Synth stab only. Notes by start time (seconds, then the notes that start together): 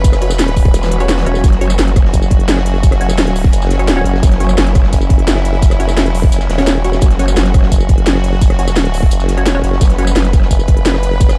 0.22 C#4 F#4 C#5
1.00 C#4 F#4 C#5
1.26 C#4 F#4 C#5
1.61 C#4 F#4 C#5
3.01 C#4 F#4 C#5
3.79 C#4 F#4 C#5
3.97 C#4 F#4 C#5
4.40 C#4 F#4 C#5
5.80 C#4 F#4 C#5
6.58 C#4 F#4 C#5
6.84 C#4 F#4 C#5
7.19 C#4 F#4 C#5
8.59 C#4 F#4 C#5
9.37 C#4 F#4 C#5
9.55 C#4 F#4 C#5
9.98 C#4 F#4 C#5